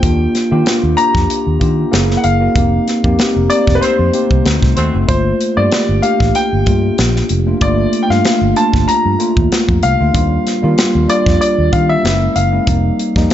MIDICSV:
0, 0, Header, 1, 7, 480
1, 0, Start_track
1, 0, Key_signature, -2, "minor"
1, 0, Tempo, 632244
1, 22, Time_signature, 4, 2, 24, 8
1, 10127, End_track
2, 0, Start_track
2, 0, Title_t, "Grand piano"
2, 0, Program_c, 0, 0
2, 0, Note_on_c, 0, 79, 94
2, 710, Note_off_c, 0, 79, 0
2, 736, Note_on_c, 0, 82, 112
2, 1649, Note_on_c, 0, 78, 57
2, 1677, Note_off_c, 0, 82, 0
2, 1700, Note_off_c, 0, 78, 0
2, 1700, Note_on_c, 0, 77, 82
2, 2390, Note_off_c, 0, 77, 0
2, 2655, Note_on_c, 0, 74, 85
2, 2848, Note_on_c, 0, 71, 60
2, 2855, Note_off_c, 0, 74, 0
2, 2894, Note_on_c, 0, 72, 84
2, 2899, Note_off_c, 0, 71, 0
2, 3587, Note_off_c, 0, 72, 0
2, 3859, Note_on_c, 0, 72, 71
2, 4228, Note_on_c, 0, 74, 74
2, 4241, Note_off_c, 0, 72, 0
2, 4555, Note_off_c, 0, 74, 0
2, 4574, Note_on_c, 0, 77, 84
2, 4824, Note_on_c, 0, 79, 86
2, 4825, Note_off_c, 0, 77, 0
2, 5512, Note_off_c, 0, 79, 0
2, 5785, Note_on_c, 0, 74, 76
2, 6094, Note_on_c, 0, 79, 64
2, 6104, Note_off_c, 0, 74, 0
2, 6151, Note_off_c, 0, 79, 0
2, 6151, Note_on_c, 0, 77, 80
2, 6504, Note_on_c, 0, 81, 80
2, 6512, Note_off_c, 0, 77, 0
2, 6740, Note_on_c, 0, 82, 88
2, 6750, Note_off_c, 0, 81, 0
2, 7430, Note_off_c, 0, 82, 0
2, 7464, Note_on_c, 0, 77, 95
2, 8424, Note_on_c, 0, 74, 81
2, 8451, Note_off_c, 0, 77, 0
2, 8651, Note_off_c, 0, 74, 0
2, 8662, Note_on_c, 0, 74, 70
2, 8903, Note_on_c, 0, 77, 73
2, 8908, Note_off_c, 0, 74, 0
2, 9030, Note_on_c, 0, 76, 86
2, 9035, Note_off_c, 0, 77, 0
2, 9381, Note_on_c, 0, 77, 74
2, 9391, Note_off_c, 0, 76, 0
2, 10070, Note_off_c, 0, 77, 0
2, 10127, End_track
3, 0, Start_track
3, 0, Title_t, "Horn section"
3, 0, Program_c, 1, 61
3, 2902, Note_on_c, 1, 63, 66
3, 2903, Note_on_c, 1, 55, 75
3, 2904, Note_on_c, 1, 60, 76
3, 2904, Note_on_c, 1, 72, 82
3, 3012, Note_off_c, 1, 55, 0
3, 3012, Note_off_c, 1, 63, 0
3, 3013, Note_off_c, 1, 60, 0
3, 3013, Note_off_c, 1, 72, 0
3, 3617, Note_on_c, 1, 66, 76
3, 3618, Note_on_c, 1, 57, 76
3, 3619, Note_on_c, 1, 60, 80
3, 3619, Note_on_c, 1, 72, 87
3, 3771, Note_off_c, 1, 66, 0
3, 3772, Note_off_c, 1, 57, 0
3, 3772, Note_off_c, 1, 60, 0
3, 3772, Note_off_c, 1, 72, 0
3, 10127, End_track
4, 0, Start_track
4, 0, Title_t, "Tine electric piano"
4, 0, Program_c, 2, 4
4, 0, Control_c, 2, 64, 127
4, 19, Note_on_c, 2, 58, 71
4, 23, Note_on_c, 2, 62, 66
4, 26, Note_on_c, 2, 65, 69
4, 30, Note_on_c, 2, 67, 73
4, 31, Control_c, 2, 64, 0
4, 174, Control_c, 2, 64, 127
4, 334, Note_off_c, 2, 58, 0
4, 336, Note_off_c, 2, 62, 0
4, 338, Note_off_c, 2, 65, 0
4, 340, Note_off_c, 2, 67, 0
4, 388, Note_on_c, 2, 58, 88
4, 389, Note_on_c, 2, 62, 71
4, 394, Note_on_c, 2, 65, 75
4, 397, Note_on_c, 2, 67, 90
4, 693, Note_off_c, 2, 58, 0
4, 693, Note_off_c, 2, 62, 0
4, 695, Note_off_c, 2, 65, 0
4, 697, Note_off_c, 2, 67, 0
4, 734, Note_on_c, 2, 58, 66
4, 737, Note_on_c, 2, 62, 63
4, 739, Note_on_c, 2, 65, 61
4, 741, Note_on_c, 2, 67, 73
4, 1154, Note_off_c, 2, 58, 0
4, 1156, Note_off_c, 2, 62, 0
4, 1157, Note_off_c, 2, 65, 0
4, 1158, Note_off_c, 2, 67, 0
4, 1212, Note_on_c, 2, 58, 67
4, 1219, Note_on_c, 2, 62, 59
4, 1220, Note_on_c, 2, 65, 59
4, 1222, Note_on_c, 2, 67, 75
4, 1444, Note_off_c, 2, 58, 0
4, 1453, Note_on_c, 2, 58, 90
4, 1457, Note_on_c, 2, 61, 77
4, 1460, Note_off_c, 2, 62, 0
4, 1460, Note_on_c, 2, 64, 81
4, 1461, Note_off_c, 2, 65, 0
4, 1462, Note_off_c, 2, 67, 0
4, 1464, Note_on_c, 2, 68, 95
4, 1472, Control_c, 2, 64, 0
4, 1587, Control_c, 2, 64, 127
4, 1771, Note_off_c, 2, 58, 0
4, 1773, Note_off_c, 2, 61, 0
4, 1775, Note_off_c, 2, 64, 0
4, 1777, Note_off_c, 2, 68, 0
4, 1824, Note_on_c, 2, 58, 64
4, 1827, Note_on_c, 2, 61, 57
4, 1831, Note_on_c, 2, 64, 52
4, 1834, Note_on_c, 2, 66, 66
4, 1922, Note_off_c, 2, 58, 0
4, 1924, Note_off_c, 2, 61, 0
4, 1925, Note_off_c, 2, 64, 0
4, 1927, Note_off_c, 2, 66, 0
4, 1937, Note_on_c, 2, 58, 70
4, 1941, Note_on_c, 2, 60, 59
4, 1944, Note_on_c, 2, 63, 65
4, 1947, Note_on_c, 2, 67, 80
4, 1950, Control_c, 2, 64, 0
4, 2101, Control_c, 2, 64, 127
4, 2253, Note_off_c, 2, 58, 0
4, 2255, Note_off_c, 2, 60, 0
4, 2256, Note_off_c, 2, 63, 0
4, 2258, Note_off_c, 2, 67, 0
4, 2306, Note_on_c, 2, 58, 74
4, 2307, Note_on_c, 2, 60, 71
4, 2312, Note_on_c, 2, 63, 73
4, 2314, Note_on_c, 2, 67, 81
4, 2611, Note_off_c, 2, 58, 0
4, 2612, Note_off_c, 2, 60, 0
4, 2614, Note_off_c, 2, 63, 0
4, 2616, Note_off_c, 2, 67, 0
4, 2653, Note_on_c, 2, 57, 56
4, 2656, Note_on_c, 2, 60, 58
4, 2659, Note_on_c, 2, 63, 60
4, 2664, Note_on_c, 2, 67, 67
4, 2704, Note_on_c, 2, 58, 61
4, 2710, Note_off_c, 2, 57, 0
4, 3076, Note_off_c, 2, 60, 0
4, 3077, Note_off_c, 2, 63, 0
4, 3079, Note_off_c, 2, 67, 0
4, 3099, Note_off_c, 2, 58, 0
4, 3136, Note_on_c, 2, 58, 66
4, 3140, Note_on_c, 2, 60, 55
4, 3142, Note_on_c, 2, 63, 56
4, 3145, Note_on_c, 2, 67, 76
4, 3369, Note_off_c, 2, 60, 0
4, 3371, Note_off_c, 2, 63, 0
4, 3376, Note_on_c, 2, 57, 68
4, 3378, Note_on_c, 2, 60, 60
4, 3379, Note_off_c, 2, 58, 0
4, 3380, Note_on_c, 2, 63, 63
4, 3383, Note_off_c, 2, 67, 0
4, 3383, Note_on_c, 2, 66, 74
4, 3391, Control_c, 2, 64, 0
4, 3522, Control_c, 2, 64, 127
4, 3692, Note_off_c, 2, 57, 0
4, 3694, Note_off_c, 2, 60, 0
4, 3695, Note_off_c, 2, 63, 0
4, 3696, Note_off_c, 2, 66, 0
4, 3747, Note_on_c, 2, 57, 61
4, 3749, Note_on_c, 2, 60, 54
4, 3752, Note_on_c, 2, 63, 55
4, 3755, Note_on_c, 2, 66, 67
4, 3843, Note_off_c, 2, 57, 0
4, 3845, Note_off_c, 2, 60, 0
4, 3846, Note_off_c, 2, 63, 0
4, 3847, Note_off_c, 2, 66, 0
4, 3851, Note_on_c, 2, 57, 68
4, 3856, Note_on_c, 2, 58, 68
4, 3858, Note_on_c, 2, 62, 59
4, 3860, Note_on_c, 2, 65, 74
4, 3870, Control_c, 2, 64, 0
4, 3996, Control_c, 2, 64, 127
4, 4170, Note_off_c, 2, 57, 0
4, 4172, Note_off_c, 2, 58, 0
4, 4174, Note_off_c, 2, 62, 0
4, 4175, Note_off_c, 2, 65, 0
4, 4224, Note_on_c, 2, 57, 63
4, 4226, Note_on_c, 2, 58, 62
4, 4231, Note_on_c, 2, 62, 63
4, 4231, Note_on_c, 2, 67, 74
4, 4530, Note_off_c, 2, 57, 0
4, 4531, Note_off_c, 2, 58, 0
4, 4534, Note_off_c, 2, 62, 0
4, 4534, Note_off_c, 2, 67, 0
4, 4573, Note_on_c, 2, 57, 65
4, 4576, Note_on_c, 2, 58, 59
4, 4578, Note_on_c, 2, 62, 60
4, 4581, Note_on_c, 2, 67, 79
4, 4993, Note_off_c, 2, 57, 0
4, 4995, Note_off_c, 2, 58, 0
4, 4997, Note_off_c, 2, 62, 0
4, 4998, Note_off_c, 2, 67, 0
4, 5057, Note_on_c, 2, 57, 64
4, 5060, Note_on_c, 2, 58, 61
4, 5062, Note_on_c, 2, 62, 62
4, 5065, Note_on_c, 2, 65, 76
4, 5576, Note_off_c, 2, 57, 0
4, 5577, Note_off_c, 2, 58, 0
4, 5579, Note_off_c, 2, 62, 0
4, 5580, Note_off_c, 2, 65, 0
4, 5667, Note_on_c, 2, 57, 62
4, 5669, Note_on_c, 2, 58, 57
4, 5672, Note_on_c, 2, 62, 56
4, 5674, Note_on_c, 2, 65, 65
4, 5763, Note_off_c, 2, 57, 0
4, 5764, Note_off_c, 2, 58, 0
4, 5766, Note_off_c, 2, 62, 0
4, 5767, Note_off_c, 2, 65, 0
4, 5778, Note_on_c, 2, 57, 69
4, 5780, Note_on_c, 2, 58, 63
4, 5785, Note_on_c, 2, 62, 64
4, 5788, Note_on_c, 2, 65, 78
4, 6093, Note_off_c, 2, 57, 0
4, 6094, Note_off_c, 2, 58, 0
4, 6097, Note_off_c, 2, 62, 0
4, 6098, Note_off_c, 2, 65, 0
4, 6146, Note_on_c, 2, 57, 72
4, 6150, Note_on_c, 2, 58, 57
4, 6153, Note_on_c, 2, 62, 57
4, 6156, Note_on_c, 2, 65, 73
4, 6451, Note_off_c, 2, 57, 0
4, 6453, Note_off_c, 2, 58, 0
4, 6455, Note_off_c, 2, 62, 0
4, 6456, Note_off_c, 2, 65, 0
4, 6496, Note_on_c, 2, 57, 61
4, 6499, Note_on_c, 2, 58, 60
4, 6502, Note_on_c, 2, 62, 61
4, 6504, Note_on_c, 2, 65, 71
4, 6915, Note_off_c, 2, 57, 0
4, 6917, Note_off_c, 2, 58, 0
4, 6918, Note_off_c, 2, 62, 0
4, 6919, Note_off_c, 2, 65, 0
4, 6978, Note_on_c, 2, 57, 70
4, 6982, Note_on_c, 2, 58, 63
4, 6984, Note_on_c, 2, 62, 62
4, 6986, Note_on_c, 2, 65, 71
4, 7496, Note_off_c, 2, 57, 0
4, 7498, Note_off_c, 2, 58, 0
4, 7499, Note_off_c, 2, 62, 0
4, 7500, Note_off_c, 2, 65, 0
4, 7588, Note_on_c, 2, 57, 57
4, 7592, Note_on_c, 2, 58, 56
4, 7595, Note_on_c, 2, 62, 52
4, 7597, Note_on_c, 2, 65, 68
4, 7684, Note_off_c, 2, 57, 0
4, 7686, Note_off_c, 2, 58, 0
4, 7688, Note_off_c, 2, 62, 0
4, 7689, Note_off_c, 2, 65, 0
4, 7697, Note_on_c, 2, 55, 69
4, 7700, Note_on_c, 2, 58, 65
4, 7701, Note_on_c, 2, 62, 61
4, 7706, Note_on_c, 2, 65, 77
4, 7712, Control_c, 2, 64, 0
4, 7856, Control_c, 2, 64, 127
4, 8013, Note_off_c, 2, 55, 0
4, 8014, Note_off_c, 2, 58, 0
4, 8015, Note_off_c, 2, 62, 0
4, 8017, Note_off_c, 2, 65, 0
4, 8066, Note_on_c, 2, 55, 85
4, 8069, Note_on_c, 2, 58, 79
4, 8073, Note_on_c, 2, 62, 74
4, 8076, Note_on_c, 2, 65, 90
4, 8371, Note_off_c, 2, 55, 0
4, 8373, Note_off_c, 2, 58, 0
4, 8375, Note_off_c, 2, 62, 0
4, 8376, Note_off_c, 2, 65, 0
4, 8414, Note_on_c, 2, 55, 68
4, 8416, Note_on_c, 2, 58, 67
4, 8418, Note_on_c, 2, 62, 60
4, 8422, Note_on_c, 2, 65, 72
4, 8834, Note_off_c, 2, 55, 0
4, 8835, Note_off_c, 2, 58, 0
4, 8836, Note_off_c, 2, 62, 0
4, 8838, Note_off_c, 2, 65, 0
4, 8897, Note_on_c, 2, 55, 66
4, 8900, Note_on_c, 2, 58, 62
4, 8902, Note_on_c, 2, 62, 65
4, 8907, Note_on_c, 2, 65, 77
4, 9130, Note_off_c, 2, 58, 0
4, 9136, Note_on_c, 2, 56, 69
4, 9138, Note_off_c, 2, 55, 0
4, 9139, Note_on_c, 2, 58, 70
4, 9141, Note_off_c, 2, 62, 0
4, 9143, Note_on_c, 2, 61, 67
4, 9144, Note_off_c, 2, 65, 0
4, 9144, Note_on_c, 2, 64, 88
4, 9151, Control_c, 2, 64, 0
4, 9296, Control_c, 2, 64, 127
4, 9452, Note_off_c, 2, 56, 0
4, 9453, Note_off_c, 2, 58, 0
4, 9456, Note_off_c, 2, 61, 0
4, 9456, Note_off_c, 2, 64, 0
4, 9505, Note_on_c, 2, 56, 67
4, 9508, Note_on_c, 2, 58, 51
4, 9511, Note_on_c, 2, 61, 58
4, 9514, Note_on_c, 2, 64, 68
4, 9602, Note_off_c, 2, 56, 0
4, 9604, Note_off_c, 2, 58, 0
4, 9605, Note_off_c, 2, 61, 0
4, 9606, Note_off_c, 2, 64, 0
4, 9619, Note_on_c, 2, 55, 66
4, 9623, Note_on_c, 2, 58, 64
4, 9624, Note_on_c, 2, 60, 64
4, 9628, Note_on_c, 2, 63, 83
4, 9629, Control_c, 2, 64, 0
4, 9783, Control_c, 2, 64, 127
4, 9933, Note_off_c, 2, 55, 0
4, 9935, Note_off_c, 2, 58, 0
4, 9936, Note_off_c, 2, 60, 0
4, 9938, Note_off_c, 2, 63, 0
4, 9989, Note_on_c, 2, 55, 83
4, 9991, Note_on_c, 2, 58, 74
4, 9995, Note_on_c, 2, 60, 69
4, 9997, Note_on_c, 2, 63, 89
4, 10127, Note_off_c, 2, 55, 0
4, 10127, Note_off_c, 2, 58, 0
4, 10127, Note_off_c, 2, 60, 0
4, 10127, Note_off_c, 2, 63, 0
4, 10127, End_track
5, 0, Start_track
5, 0, Title_t, "Fingered electric bass"
5, 0, Program_c, 3, 33
5, 24, Note_on_c, 3, 39, 97
5, 193, Note_off_c, 3, 39, 0
5, 394, Note_on_c, 3, 51, 83
5, 471, Note_off_c, 3, 51, 0
5, 633, Note_on_c, 3, 39, 73
5, 711, Note_off_c, 3, 39, 0
5, 871, Note_on_c, 3, 41, 80
5, 950, Note_off_c, 3, 41, 0
5, 1114, Note_on_c, 3, 39, 72
5, 1192, Note_off_c, 3, 39, 0
5, 1225, Note_on_c, 3, 51, 91
5, 1394, Note_off_c, 3, 51, 0
5, 1465, Note_on_c, 3, 30, 81
5, 1634, Note_off_c, 3, 30, 0
5, 1703, Note_on_c, 3, 30, 69
5, 1873, Note_off_c, 3, 30, 0
5, 1941, Note_on_c, 3, 29, 90
5, 2111, Note_off_c, 3, 29, 0
5, 2311, Note_on_c, 3, 41, 83
5, 2389, Note_off_c, 3, 41, 0
5, 2554, Note_on_c, 3, 29, 76
5, 2631, Note_off_c, 3, 29, 0
5, 2792, Note_on_c, 3, 29, 77
5, 2870, Note_off_c, 3, 29, 0
5, 3031, Note_on_c, 3, 41, 74
5, 3109, Note_off_c, 3, 41, 0
5, 3270, Note_on_c, 3, 36, 66
5, 3349, Note_off_c, 3, 36, 0
5, 3382, Note_on_c, 3, 38, 100
5, 3474, Note_off_c, 3, 38, 0
5, 3514, Note_on_c, 3, 36, 73
5, 3591, Note_off_c, 3, 36, 0
5, 3624, Note_on_c, 3, 39, 77
5, 3715, Note_off_c, 3, 39, 0
5, 3753, Note_on_c, 3, 30, 71
5, 3831, Note_off_c, 3, 30, 0
5, 3862, Note_on_c, 3, 31, 99
5, 4032, Note_off_c, 3, 31, 0
5, 4232, Note_on_c, 3, 43, 80
5, 4310, Note_off_c, 3, 43, 0
5, 4471, Note_on_c, 3, 31, 72
5, 4550, Note_off_c, 3, 31, 0
5, 4710, Note_on_c, 3, 33, 80
5, 4789, Note_off_c, 3, 33, 0
5, 4956, Note_on_c, 3, 31, 77
5, 5032, Note_off_c, 3, 31, 0
5, 5063, Note_on_c, 3, 43, 89
5, 5233, Note_off_c, 3, 43, 0
5, 5306, Note_on_c, 3, 34, 90
5, 5475, Note_off_c, 3, 34, 0
5, 5546, Note_on_c, 3, 29, 84
5, 5715, Note_off_c, 3, 29, 0
5, 5782, Note_on_c, 3, 31, 99
5, 5952, Note_off_c, 3, 31, 0
5, 6151, Note_on_c, 3, 43, 93
5, 6229, Note_off_c, 3, 43, 0
5, 6388, Note_on_c, 3, 31, 72
5, 6467, Note_off_c, 3, 31, 0
5, 6634, Note_on_c, 3, 31, 76
5, 6711, Note_off_c, 3, 31, 0
5, 6875, Note_on_c, 3, 43, 76
5, 6952, Note_off_c, 3, 43, 0
5, 7114, Note_on_c, 3, 39, 79
5, 7192, Note_off_c, 3, 39, 0
5, 7354, Note_on_c, 3, 41, 82
5, 7431, Note_off_c, 3, 41, 0
5, 7468, Note_on_c, 3, 36, 76
5, 7557, Note_off_c, 3, 36, 0
5, 7597, Note_on_c, 3, 38, 77
5, 7673, Note_off_c, 3, 38, 0
5, 7702, Note_on_c, 3, 39, 111
5, 7872, Note_off_c, 3, 39, 0
5, 8076, Note_on_c, 3, 51, 84
5, 8152, Note_off_c, 3, 51, 0
5, 8315, Note_on_c, 3, 39, 76
5, 8392, Note_off_c, 3, 39, 0
5, 8552, Note_on_c, 3, 41, 74
5, 8630, Note_off_c, 3, 41, 0
5, 8795, Note_on_c, 3, 39, 82
5, 8872, Note_off_c, 3, 39, 0
5, 8907, Note_on_c, 3, 51, 93
5, 9075, Note_off_c, 3, 51, 0
5, 9145, Note_on_c, 3, 30, 88
5, 9314, Note_off_c, 3, 30, 0
5, 9383, Note_on_c, 3, 30, 77
5, 9552, Note_off_c, 3, 30, 0
5, 9622, Note_on_c, 3, 29, 116
5, 9791, Note_off_c, 3, 29, 0
5, 9990, Note_on_c, 3, 41, 79
5, 10069, Note_off_c, 3, 41, 0
5, 10127, End_track
6, 0, Start_track
6, 0, Title_t, "Muted fingered electric bass strokes"
6, 6745, Note_on_c, 9, 29, 36
6, 6820, Note_off_c, 9, 29, 0
6, 10127, End_track
7, 0, Start_track
7, 0, Title_t, "Drums"
7, 22, Note_on_c, 9, 36, 99
7, 22, Note_on_c, 9, 42, 83
7, 98, Note_off_c, 9, 36, 0
7, 98, Note_off_c, 9, 42, 0
7, 265, Note_on_c, 9, 42, 65
7, 268, Note_on_c, 9, 38, 30
7, 341, Note_off_c, 9, 42, 0
7, 344, Note_off_c, 9, 38, 0
7, 502, Note_on_c, 9, 42, 63
7, 508, Note_on_c, 9, 38, 89
7, 578, Note_off_c, 9, 42, 0
7, 584, Note_off_c, 9, 38, 0
7, 744, Note_on_c, 9, 42, 65
7, 820, Note_off_c, 9, 42, 0
7, 871, Note_on_c, 9, 36, 85
7, 879, Note_on_c, 9, 38, 34
7, 947, Note_off_c, 9, 36, 0
7, 955, Note_off_c, 9, 38, 0
7, 987, Note_on_c, 9, 42, 86
7, 1063, Note_off_c, 9, 42, 0
7, 1223, Note_on_c, 9, 36, 74
7, 1223, Note_on_c, 9, 42, 56
7, 1299, Note_off_c, 9, 36, 0
7, 1299, Note_off_c, 9, 42, 0
7, 1467, Note_on_c, 9, 42, 77
7, 1471, Note_on_c, 9, 38, 91
7, 1543, Note_off_c, 9, 42, 0
7, 1547, Note_off_c, 9, 38, 0
7, 1597, Note_on_c, 9, 38, 32
7, 1673, Note_off_c, 9, 38, 0
7, 1698, Note_on_c, 9, 42, 60
7, 1774, Note_off_c, 9, 42, 0
7, 1940, Note_on_c, 9, 36, 107
7, 1942, Note_on_c, 9, 42, 83
7, 2016, Note_off_c, 9, 36, 0
7, 2018, Note_off_c, 9, 42, 0
7, 2184, Note_on_c, 9, 42, 65
7, 2187, Note_on_c, 9, 38, 32
7, 2260, Note_off_c, 9, 42, 0
7, 2263, Note_off_c, 9, 38, 0
7, 2309, Note_on_c, 9, 36, 74
7, 2385, Note_off_c, 9, 36, 0
7, 2420, Note_on_c, 9, 42, 66
7, 2427, Note_on_c, 9, 38, 95
7, 2496, Note_off_c, 9, 42, 0
7, 2503, Note_off_c, 9, 38, 0
7, 2660, Note_on_c, 9, 42, 68
7, 2736, Note_off_c, 9, 42, 0
7, 2790, Note_on_c, 9, 36, 84
7, 2798, Note_on_c, 9, 38, 34
7, 2866, Note_off_c, 9, 36, 0
7, 2874, Note_off_c, 9, 38, 0
7, 2904, Note_on_c, 9, 42, 85
7, 2980, Note_off_c, 9, 42, 0
7, 3140, Note_on_c, 9, 42, 63
7, 3216, Note_off_c, 9, 42, 0
7, 3270, Note_on_c, 9, 36, 88
7, 3345, Note_off_c, 9, 36, 0
7, 3383, Note_on_c, 9, 42, 77
7, 3387, Note_on_c, 9, 38, 92
7, 3459, Note_off_c, 9, 42, 0
7, 3463, Note_off_c, 9, 38, 0
7, 3511, Note_on_c, 9, 36, 79
7, 3517, Note_on_c, 9, 38, 33
7, 3587, Note_off_c, 9, 36, 0
7, 3593, Note_off_c, 9, 38, 0
7, 3619, Note_on_c, 9, 42, 61
7, 3695, Note_off_c, 9, 42, 0
7, 3861, Note_on_c, 9, 36, 111
7, 3862, Note_on_c, 9, 42, 81
7, 3937, Note_off_c, 9, 36, 0
7, 3938, Note_off_c, 9, 42, 0
7, 4104, Note_on_c, 9, 42, 67
7, 4180, Note_off_c, 9, 42, 0
7, 4339, Note_on_c, 9, 42, 61
7, 4346, Note_on_c, 9, 38, 101
7, 4415, Note_off_c, 9, 42, 0
7, 4422, Note_off_c, 9, 38, 0
7, 4579, Note_on_c, 9, 42, 64
7, 4655, Note_off_c, 9, 42, 0
7, 4709, Note_on_c, 9, 36, 84
7, 4716, Note_on_c, 9, 38, 35
7, 4785, Note_off_c, 9, 36, 0
7, 4792, Note_off_c, 9, 38, 0
7, 4821, Note_on_c, 9, 42, 92
7, 4897, Note_off_c, 9, 42, 0
7, 5058, Note_on_c, 9, 42, 65
7, 5062, Note_on_c, 9, 36, 76
7, 5134, Note_off_c, 9, 42, 0
7, 5138, Note_off_c, 9, 36, 0
7, 5301, Note_on_c, 9, 42, 66
7, 5305, Note_on_c, 9, 38, 88
7, 5377, Note_off_c, 9, 42, 0
7, 5381, Note_off_c, 9, 38, 0
7, 5435, Note_on_c, 9, 38, 33
7, 5511, Note_off_c, 9, 38, 0
7, 5537, Note_on_c, 9, 42, 65
7, 5613, Note_off_c, 9, 42, 0
7, 5778, Note_on_c, 9, 42, 82
7, 5780, Note_on_c, 9, 36, 114
7, 5854, Note_off_c, 9, 42, 0
7, 5856, Note_off_c, 9, 36, 0
7, 6020, Note_on_c, 9, 42, 61
7, 6096, Note_off_c, 9, 42, 0
7, 6155, Note_on_c, 9, 38, 25
7, 6231, Note_off_c, 9, 38, 0
7, 6261, Note_on_c, 9, 42, 60
7, 6267, Note_on_c, 9, 38, 103
7, 6336, Note_off_c, 9, 42, 0
7, 6343, Note_off_c, 9, 38, 0
7, 6502, Note_on_c, 9, 42, 67
7, 6578, Note_off_c, 9, 42, 0
7, 6632, Note_on_c, 9, 36, 79
7, 6640, Note_on_c, 9, 38, 34
7, 6708, Note_off_c, 9, 36, 0
7, 6716, Note_off_c, 9, 38, 0
7, 6747, Note_on_c, 9, 42, 86
7, 6823, Note_off_c, 9, 42, 0
7, 6984, Note_on_c, 9, 42, 57
7, 7060, Note_off_c, 9, 42, 0
7, 7112, Note_on_c, 9, 36, 98
7, 7188, Note_off_c, 9, 36, 0
7, 7227, Note_on_c, 9, 42, 76
7, 7231, Note_on_c, 9, 38, 88
7, 7303, Note_off_c, 9, 42, 0
7, 7307, Note_off_c, 9, 38, 0
7, 7353, Note_on_c, 9, 36, 74
7, 7429, Note_off_c, 9, 36, 0
7, 7461, Note_on_c, 9, 42, 63
7, 7536, Note_off_c, 9, 42, 0
7, 7702, Note_on_c, 9, 36, 100
7, 7702, Note_on_c, 9, 42, 84
7, 7778, Note_off_c, 9, 36, 0
7, 7778, Note_off_c, 9, 42, 0
7, 7946, Note_on_c, 9, 42, 66
7, 7949, Note_on_c, 9, 38, 32
7, 8022, Note_off_c, 9, 42, 0
7, 8025, Note_off_c, 9, 38, 0
7, 8183, Note_on_c, 9, 42, 62
7, 8189, Note_on_c, 9, 38, 98
7, 8259, Note_off_c, 9, 42, 0
7, 8265, Note_off_c, 9, 38, 0
7, 8424, Note_on_c, 9, 42, 71
7, 8499, Note_off_c, 9, 42, 0
7, 8552, Note_on_c, 9, 36, 87
7, 8559, Note_on_c, 9, 38, 32
7, 8628, Note_off_c, 9, 36, 0
7, 8635, Note_off_c, 9, 38, 0
7, 8667, Note_on_c, 9, 42, 80
7, 8743, Note_off_c, 9, 42, 0
7, 8903, Note_on_c, 9, 42, 61
7, 8904, Note_on_c, 9, 36, 73
7, 8979, Note_off_c, 9, 42, 0
7, 8980, Note_off_c, 9, 36, 0
7, 9148, Note_on_c, 9, 42, 71
7, 9153, Note_on_c, 9, 38, 93
7, 9224, Note_off_c, 9, 42, 0
7, 9228, Note_off_c, 9, 38, 0
7, 9382, Note_on_c, 9, 42, 68
7, 9458, Note_off_c, 9, 42, 0
7, 9620, Note_on_c, 9, 42, 86
7, 9621, Note_on_c, 9, 36, 102
7, 9695, Note_off_c, 9, 42, 0
7, 9697, Note_off_c, 9, 36, 0
7, 9866, Note_on_c, 9, 42, 63
7, 9942, Note_off_c, 9, 42, 0
7, 9990, Note_on_c, 9, 36, 78
7, 9997, Note_on_c, 9, 38, 29
7, 10066, Note_off_c, 9, 36, 0
7, 10073, Note_off_c, 9, 38, 0
7, 10101, Note_on_c, 9, 42, 71
7, 10127, Note_off_c, 9, 42, 0
7, 10127, End_track
0, 0, End_of_file